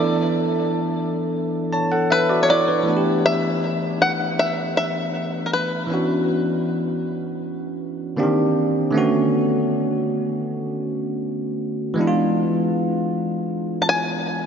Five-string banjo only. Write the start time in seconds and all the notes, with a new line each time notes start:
Already playing: D5
2.12 B4
2.43 C#5
2.50 D5
3.26 E5
4.02 F#5
4.39 E5
4.77 E5
5.46 A#4
5.53 B4
13.82 A5
13.89 G#5